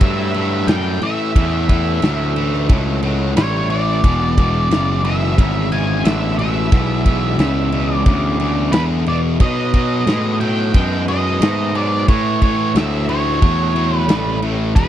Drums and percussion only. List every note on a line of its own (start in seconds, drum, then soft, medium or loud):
0.01 kick loud
0.01 ride medium
0.34 ride medium
0.68 snare loud
0.68 ride medium
1.02 ride medium
1.36 kick loud
1.36 ride medium
1.69 kick medium
1.69 ride medium
2.02 snare loud
2.02 ride medium
2.36 ride medium
2.54 snare soft
2.69 kick loud
2.69 ride medium
3.03 ride medium
3.37 snare loud
3.37 ride loud
3.70 ride medium
4.04 kick loud
4.04 ride medium
4.38 kick medium
4.38 ride medium
4.71 snare loud
4.71 ride medium
5.05 ride medium
5.23 snare soft
5.38 kick loud
5.38 ride medium
5.72 ride medium
6.05 snare loud
6.05 ride medium
6.39 ride medium
6.72 kick loud
6.72 ride medium
7.06 kick medium
7.06 ride medium
7.39 snare loud
7.39 ride medium
7.72 ride medium
8.06 kick loud
8.06 ride medium
8.40 ride medium
8.73 snare loud
8.73 ride medium
9.06 ride medium
9.40 kick loud
9.40 ride loud
9.74 kick medium
9.74 ride medium
10.07 snare medium
10.07 ride medium
10.41 ride medium
10.74 kick loud
10.74 ride medium
11.08 ride medium
11.42 snare loud
11.42 ride loud
11.75 ride medium
12.08 kick loud
12.08 ride medium
12.41 kick medium
12.41 ride medium
12.76 snare loud
12.76 ride medium
13.09 ride medium
13.27 snare soft
13.42 kick loud
13.42 ride medium
13.76 ride medium
14.09 snare loud
14.09 ride medium
14.42 ride medium
14.76 kick loud
14.76 ride medium